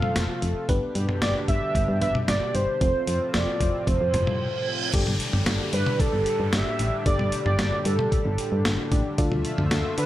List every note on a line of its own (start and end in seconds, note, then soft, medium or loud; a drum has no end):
0.00 0.65 C3 medium
0.00 0.67 F3 medium
0.00 0.67 A3 medium
0.00 0.69 A3 medium
0.00 0.69 C4 soft
0.00 0.67 F4 medium
0.00 0.69 F4 soft
0.00 0.67 A4 medium
0.00 0.69 A4 medium
0.00 0.38 F5 loud
0.00 mid tom medium
0.16 0.27 F1 loud
0.16 snare loud
0.16 closed hi-hat medium
0.42 0.54 F1 loud
0.42 closed hi-hat medium
0.69 0.80 G1 loud
0.69 2.79 B2 medium
0.69 2.79 D3 medium
0.69 2.79 G3 medium
0.69 1.99 B3 medium
0.69 1.99 D4 medium
0.69 2.79 D4 medium
0.69 1.99 G4 medium
0.69 2.79 G4 medium
0.69 1.99 B4 medium
0.69 kick loud
0.69 closed hi-hat medium
0.95 1.07 G2 loud
0.95 closed hi-hat medium
1.09 mid tom medium
1.22 1.33 G1 loud
1.22 1.34 D5 loud
1.22 snare loud
1.22 closed hi-hat medium
1.48 1.60 G1 loud
1.48 1.98 E5 loud
1.48 kick medium
1.48 closed hi-hat medium
1.75 1.87 G1 loud
1.75 kick loud
1.75 closed hi-hat medium
1.88 2.00 G2 loud
2.01 2.13 G1 loud
2.01 2.81 B3 medium
2.01 2.81 D4 soft
2.01 2.81 G4 soft
2.01 2.81 B4 medium
2.01 2.14 E5 loud
2.01 closed hi-hat medium
2.01 mid tom loud
2.15 mid tom medium
2.28 2.40 G1 loud
2.28 2.57 D5 loud
2.28 snare loud
2.28 closed hi-hat medium
2.55 2.66 G1 loud
2.55 3.36 C5 loud
2.55 closed hi-hat medium
2.81 2.93 F1 loud
2.81 4.92 A2 medium
2.81 4.92 C3 medium
2.81 4.92 F3 medium
2.81 4.90 C4 medium
2.81 4.92 C4 medium
2.81 4.90 F4 medium
2.81 4.92 F4 medium
2.81 4.90 A4 medium
2.81 4.90 C5 medium
2.81 kick loud
2.81 closed hi-hat medium
3.07 3.19 F2 loud
3.07 closed hi-hat medium
3.34 3.46 F1 loud
3.34 3.81 D5 medium
3.34 snare loud
3.34 closed hi-hat medium
3.61 3.72 F1 loud
3.61 kick medium
3.61 closed hi-hat medium
3.81 3.89 D5 medium
3.87 3.99 F1 loud
3.87 4.67 C5 medium
3.87 kick loud
3.87 closed hi-hat medium
3.87 reverse cymbal medium
4.01 4.12 F2 loud
4.14 4.25 F1 loud
4.14 closed hi-hat medium
4.14 mid tom medium
4.27 mid tom medium
4.93 5.05 G1 loud
4.93 9.14 A2 medium
4.93 10.06 D3 medium
4.93 9.14 G3 medium
4.93 7.02 D4 medium
4.93 9.14 D4 medium
4.93 7.02 G4 medium
4.93 9.14 G4 medium
4.93 7.02 A4 medium
4.93 7.02 D5 medium
4.93 kick loud
4.93 closed hi-hat medium
4.93 crash loud
4.93 downlifter medium
5.07 5.18 G1 loud
5.07 mid tom medium
5.20 closed hi-hat medium
5.33 5.45 G1 loud
5.33 mid tom medium
5.46 5.58 G1 loud
5.46 snare loud
5.46 closed hi-hat medium
5.73 5.85 G2 loud
5.73 6.02 B4 medium
5.73 closed hi-hat medium
5.86 mid tom loud
6.00 6.55 A4 loud
6.00 kick loud
6.00 closed hi-hat medium
6.13 6.25 G1 loud
6.26 closed hi-hat medium
6.40 6.51 G2 loud
6.53 6.64 G1 medium
6.53 7.06 E5 loud
6.53 snare loud
6.53 closed hi-hat medium
6.79 6.91 A1 medium
6.79 closed hi-hat medium
7.06 7.18 G1 loud
7.06 8.88 D4 medium
7.06 8.88 G4 medium
7.06 8.88 A4 medium
7.06 8.88 D5 medium
7.06 7.43 D5 loud
7.06 kick loud
7.06 closed hi-hat medium
7.19 7.31 G1 loud
7.19 mid tom medium
7.32 closed hi-hat medium
7.46 7.57 G1 loud
7.46 7.87 D5 loud
7.46 mid tom medium
7.59 7.71 G1 loud
7.59 snare loud
7.59 closed hi-hat medium
7.85 7.97 G2 loud
7.85 8.92 A4 medium
7.85 closed hi-hat medium
7.99 mid tom loud
8.12 kick loud
8.12 closed hi-hat medium
8.26 8.37 G1 loud
8.38 closed hi-hat medium
8.52 8.63 G2 loud
8.65 8.77 G1 medium
8.65 snare loud
8.65 closed hi-hat medium
8.92 9.03 A1 medium
8.92 9.17 D4 medium
8.92 9.18 G4 medium
8.92 9.17 A4 medium
8.92 9.17 D5 medium
8.92 kick loud
8.92 closed hi-hat medium
9.18 9.30 D2 loud
9.18 10.06 F3 medium
9.18 10.06 A3 medium
9.18 10.06 D4 medium
9.18 10.06 F4 medium
9.18 10.06 A4 medium
9.18 10.06 D5 medium
9.18 10.06 E5 medium
9.18 kick loud
9.18 closed hi-hat medium
9.32 9.43 D2 loud
9.32 mid tom medium
9.45 closed hi-hat medium
9.58 9.70 D2 medium
9.58 mid tom loud
9.71 9.83 D2 loud
9.71 snare loud
9.71 closed hi-hat medium
9.98 10.06 D3 loud
9.98 10.06 B4 medium
9.98 closed hi-hat medium